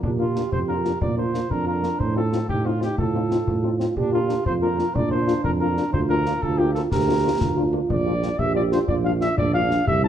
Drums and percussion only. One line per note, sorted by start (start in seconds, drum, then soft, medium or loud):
0.03 concert bass drum medium
0.36 snare soft
0.52 concert bass drum medium
0.85 snare soft
1.01 concert bass drum medium
1.34 snare soft
1.51 concert bass drum medium
1.83 snare soft
2.00 concert bass drum medium
2.33 snare soft
2.49 concert bass drum medium
2.82 snare soft
2.98 concert bass drum medium
3.31 snare soft
3.47 concert bass drum medium
3.80 snare soft
3.97 concert bass drum medium
4.29 snare soft
4.46 concert bass drum medium
4.79 snare soft
4.95 concert bass drum medium
5.28 snare soft
5.44 concert bass drum medium
5.77 snare soft
5.93 concert bass drum medium
6.26 snare soft
6.42 concert bass drum medium
6.75 snare soft
6.92 concert bass drum medium
6.92 snare medium
7.41 concert bass drum medium
7.41 snare soft
7.90 concert bass drum medium
8.23 snare soft
8.39 concert bass drum medium
8.72 snare soft
8.88 concert bass drum medium
9.21 snare soft
9.38 concert bass drum medium
9.71 snare soft
9.87 concert bass drum medium